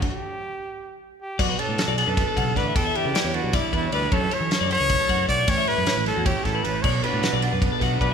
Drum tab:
CC |x------|x------|-------|-------|
RD |-------|-xxxxxx|xxxxxxx|xxxxxxx|
SD |-------|--ooo-o|--o-o--|--o----|
BD |o------|o---ooo|o---oo-|o---ooo|

CC |-------|x------|
RD |xxxxxxx|-xxxxxx|
SD |-ooo-o-|--o--o-|
BD |o---oo-|o---ooo|